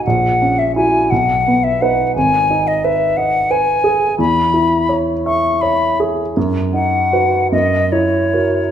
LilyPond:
<<
  \new Staff \with { instrumentName = "Flute" } { \time 6/8 \key b \major \tempo 4. = 56 fis''8. e''16 gis''8 fis''8. e''16 fis''8 | \key cis \dorian gis''8. dis''16 e''8 fis''8 gis''4 | b''4 r8 cis'''8 b''8 r8 | r8 fis''4 dis''8 cis''4 | }
  \new Staff \with { instrumentName = "Grand piano" } { \time 6/8 \key b \major ais,,8 cis'8 <e' fis'>8 b,,8 b8 <dis' b'>8 | \key cis \dorian gis,,8 dis'8 b'8 dis''8 b'8 gis'8 | e,8 e'8 cis''8 e''8 cis''8 gis'8 | fis,8 dis'8 <fis' b'>8 fis,8 e'8 <fis' ais'>8 | }
>>